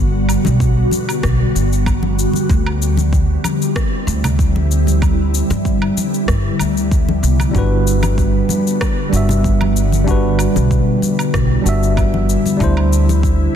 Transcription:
Already playing: upright bass G1, ambient pad D3 G3 B3 F#4
0.29 low woodblock, shaker
0.45 upright bass B1, high conga, shaker
0.60 kick, shaker
0.91 high conga, shaker
1.09 low woodblock, shaker
1.23 upright bass B1, kick, cross-stick, shaker
1.55 upright bass G1, shaker
1.73 shaker
1.86 kick, low woodblock, shaker
2.03 high conga
2.19 shaker
2.33 high conga, shaker
2.49 upright bass D2, ambient pad D3 C4 E4, kick, shaker
2.66 low woodblock
2.82 shaker
2.97 high conga, shaker
3.13 kick, shaker
3.44 high conga, low woodblock, shaker
3.62 shaker
3.76 kick, cross-stick, shaker
4.07 upright bass D2, shaker
4.24 low conga, low woodblock, shaker
4.39 kick, shaker
4.56 high conga
4.71 shaker
4.87 high conga, shaker
5.02 ambient pad B3, kick, low woodblock, shaker
5.34 shaker
5.50 upright bass G2, high conga, shaker
5.65 kick, shaker
5.82 low woodblock
5.97 high conga, shaker
6.14 shaker
6.28 upright bass G2, kick, cross-stick, shaker
6.59 upright bass D2, low woodblock, shaker
6.77 shaker
6.91 kick, shaker
7.09 high conga
7.23 upright bass C2, shaker
7.40 high conga, low woodblock, shaker
7.51 upright bass G1, tine electric piano G3 D4, ambient pad F#4, kick
7.55 tine electric piano F#4 B4, shaker
7.87 shaker
8.03 high conga, low woodblock, shaker
8.18 kick, shaker
8.49 high conga, shaker
8.67 shaker
8.81 kick, cross-stick, low woodblock, shaker
9.10 upright bass G1, tine electric piano G3 D4
9.14 tine electric piano F#4 E5, shaker
9.29 low conga, shaker
9.44 kick, shaker
9.61 high conga, low woodblock
9.76 shaker
9.92 high conga, shaker
10.04 tine electric piano G3 D4, ambient pad E4, kick
10.08 tine electric piano F#4 B4, shaker
10.39 low woodblock, shaker
10.56 upright bass B1, high conga, shaker
10.71 kick, shaker
11.02 high conga, shaker
11.19 low woodblock, shaker
11.34 upright bass B1, kick, cross-stick, shaker
11.62 upright bass G1, tine electric piano G3 D4
11.66 tine electric piano F#4 E5, shaker
11.83 shaker
11.97 kick, low woodblock, shaker
12.14 high conga
12.29 shaker
12.46 high conga, shaker
12.57 upright bass D2, tine electric piano G3 D4, ambient pad G3 C4, kick
12.61 tine electric piano E4 C5, shaker
12.77 low woodblock
12.93 shaker
13.09 high conga, shaker
13.23 kick, shaker

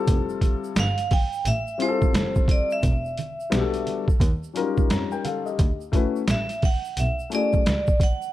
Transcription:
Already playing: grand piano G3 C4 E4 F4 A4
0.08 double bass F1, kick, closed hi-hat, shaker
0.29 shaker
0.41 kick, closed hi-hat, low conga, shaker
0.64 shaker
0.76 double bass G1, vibraphone F5, snare, closed hi-hat, shaker
0.98 closed hi-hat, shaker
1.11 vibraphone G5, kick, open hi-hat, low conga, shaker
1.33 shaker
1.45 double bass A1, vibraphone E5, closed hi-hat, shaker
1.67 shaker
1.78 grand piano G3 C4 E4 F4 G#4, closed hi-hat, shaker
1.82 vibraphone C5
1.88 grand piano A4
2.02 kick, high conga, shaker
2.14 double bass F1, snare, closed hi-hat, high conga, shaker
2.35 kick, shaker
2.48 vibraphone D5, kick, closed hi-hat, low conga, shaker
2.71 vibraphone E5, shaker
2.83 double bass E1, kick, closed hi-hat, shaker
3.05 shaker
3.18 closed hi-hat, low conga, shaker
3.40 shaker
3.50 double bass B1, grand piano G3 B3 D4 F#4 G4, snare, closed hi-hat, shaker
3.60 grand piano A4
3.74 closed hi-hat, shaker
3.87 closed hi-hat, low conga, shaker
4.08 kick, shaker
4.20 double bass D#2, kick, closed hi-hat, shaker
4.43 shaker
4.54 grand piano F#3 C#4 D#4 F4 A#4, closed hi-hat, shaker
4.60 grand piano G3
4.77 kick, high conga, shaker
4.90 double bass F2, grand piano C#5 A#5, snare, closed hi-hat, high conga, shaker
5.11 grand piano A#4 G5, shaker
5.25 grand piano A4 F5, closed hi-hat, low conga, shaker
5.46 grand piano G4 D#5, shaker
5.59 double bass D2, kick, closed hi-hat, shaker
5.81 shaker
5.92 grand piano A3 C#4 E4 F#4 B4, kick, closed hi-hat, low conga, shaker
6.16 shaker
6.28 double bass A1, vibraphone E5, snare, closed hi-hat, shaker
6.49 closed hi-hat, shaker
6.62 vibraphone F#5, kick, open hi-hat, low conga, shaker
6.85 shaker
6.97 double bass B1, vibraphone E5, closed hi-hat, shaker
7.19 shaker
7.30 grand piano A3 C#4 E4 F#4 G#4, closed hi-hat, shaker
7.35 vibraphone D5
7.53 kick, high conga, shaker
7.66 double bass C#2, snare, closed hi-hat, high conga, shaker
7.87 kick, shaker
8.00 vibraphone F#5, kick, closed hi-hat, low conga, shaker
8.22 shaker

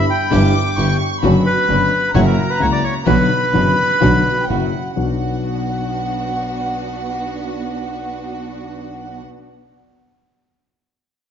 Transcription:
Already playing: violin section B5
0.10 bandoneon G5
0.31 grand piano G1 G2 D3 G3 B3 E4, double bass G1, string section D4 E4 G4, violin section D6
0.77 grand piano G1 G2 D3 G3 B3 E4, double bass G1, string section D4 E4 G4, violin section C#6
1.22 double bass F#1, grand piano F#2 D3 F#3 B3 F#4, string section B3 D4 F#4, violin section B5
1.46 bandoneon B4
1.69 double bass F#1, grand piano F#2 D3 F#3 B3 F#4, string section B3 D4 F#4
2.14 double bass F#1, grand piano F#2 C#3 F#3 A#3 E4, string section A#3 E4 F#4, bandoneon C#5, violin section A#5
2.26 bandoneon A#4
2.50 bandoneon B4
2.59 grand piano C#2 C#3 F#3 A#3 E4, double bass C#2, string section A#3 E4 F#4, bandoneon C#5
2.72 bandoneon D5
2.84 bandoneon C#5
3.05 grand piano B1 B2 D3 F#3 B3 F#4, double bass B1, string section B3 D4 F#4, bandoneon B4, violin section B5
3.53 grand piano F#1 F#2 D3 F#3 B3 F#4, double bass F#1, string section B3 D4 F#4, violin section B5
4.01 grand piano B1 B2 D3 F#3 B3 F#4, double bass B1, string section B3 D4 F#4
4.43 violin section G5
4.49 double bass F#1, grand piano F#2 C#3 F#3 A#3 E4, string section A#3 E4 F#4, violin section F#5
4.96 grand piano B1 B3 D4 F#4, double bass B1, string section B3 D4 F#4, violin section F#5

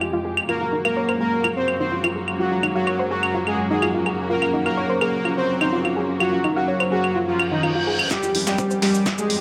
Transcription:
Already playing: string section F2 C3 G#3 G4, ambient pad G#3 F4
0.01 synth arpeggio sound F4, claves
0.13 synth arpeggio sound F4
0.25 synth arpeggio sound G#4
0.37 claves
0.49 string section F#2 C#3 A#3 F#4, supersaw synth A#3, ambient pad C#4, synth arpeggio sound F4, analog polysynth A#4, claves
0.61 synth arpeggio sound F4
0.73 synth arpeggio sound D#4
0.80 ambient pad A#4
0.85 supersaw synth A#3, analog polysynth A#4, synth arpeggio sound F5, claves
0.97 synth arpeggio sound C#5
1.06 synth arpeggio sound C5, ambient pad F#5, claves
1.20 supersaw synth A#3, synth arpeggio sound G#4, analog polysynth A#4
1.44 synth arpeggio sound F4, claves
1.56 supersaw synth C4, analog polysynth C5
1.68 claves
1.80 supersaw synth C4, synth arpeggio sound D#4, analog polysynth C5
1.92 synth arpeggio sound F4
2.04 synth arpeggio sound F4, claves
2.16 synth arpeggio sound G#4
2.28 claves
2.39 supersaw synth F#3, synth arpeggio sound F4, analog polysynth F#4
2.52 synth arpeggio sound F4
2.63 synth arpeggio sound D#4, claves
2.75 supersaw synth F#3, analog polysynth F#4, synth arpeggio sound F5
2.87 synth arpeggio sound C#5, claves
2.99 synth arpeggio sound C5
3.11 supersaw synth F#3, analog polysynth F#4, synth arpeggio sound G#4
3.23 claves
3.35 synth arpeggio sound F4
3.47 supersaw synth G#3, analog polysynth G#4, claves
3.70 supersaw synth G#3, synth arpeggio sound D#4, analog polysynth G#4
3.82 synth arpeggio sound F4, claves
3.94 synth arpeggio sound F4
4.06 synth arpeggio sound G#4, claves
4.30 supersaw synth A#3, synth arpeggio sound F4, analog polysynth A#4
4.42 synth arpeggio sound F4, claves
4.54 synth arpeggio sound D#4
4.66 supersaw synth A#3, analog polysynth A#4, synth arpeggio sound F5, claves
4.77 synth arpeggio sound C#5
4.90 synth arpeggio sound C5
5.01 supersaw synth A#3, synth arpeggio sound G#4, analog polysynth A#4, claves
5.25 synth arpeggio sound F4, claves
5.37 supersaw synth C4, analog polysynth C5
5.61 supersaw synth C4, synth arpeggio sound D#4, analog polysynth C5, claves
5.73 synth arpeggio sound F4
5.85 synth arpeggio sound F4, claves
5.96 synth arpeggio sound G#4
6.20 supersaw synth F#3, synth arpeggio sound F4, analog polysynth F#4, claves
6.32 synth arpeggio sound F4
6.44 synth arpeggio sound D#4, claves
6.56 supersaw synth F#3, analog polysynth F#4, synth arpeggio sound F5
6.68 synth arpeggio sound C#5
6.80 synth arpeggio sound C5, claves
6.92 supersaw synth F#3, analog polysynth F#4, synth arpeggio sound G#4
7.04 claves
7.16 synth arpeggio sound F4, reverse cymbal
7.28 supersaw synth F3, analog polysynth F4
7.39 claves
7.52 supersaw synth D#3, analog polysynth D#4, synth arpeggio sound D#4
7.63 synth arpeggio sound F4, claves
7.75 synth arpeggio sound F4
7.87 synth arpeggio sound G#4
7.99 claves
8.11 string section F2 C3 G#3 G4, analog polysynth G3 G4, supersaw synth G3, synth arpeggio sound F4, ambient pad F4, kick, snare, mid tom, riser, shaker
8.23 synth arpeggio sound F4, shaker
8.35 synth arpeggio sound E4, open hi-hat
8.44 analog polysynth G3 G4, supersaw synth G3, ambient pad G#3, synth arpeggio sound F5, snare, mid tom, shaker
8.53 ambient pad G5
8.58 synth arpeggio sound C5, kick, shaker
8.71 synth arpeggio sound C5, shaker
8.82 analog polysynth G3 G4, supersaw synth G3, synth arpeggio sound G#4, snare, mid tom, open hi-hat
8.94 shaker
9.06 synth arpeggio sound F4, kick, snare, shaker
9.18 supersaw synth G#3, analog polysynth G#3 G#4, mid tom, shaker
9.30 open hi-hat

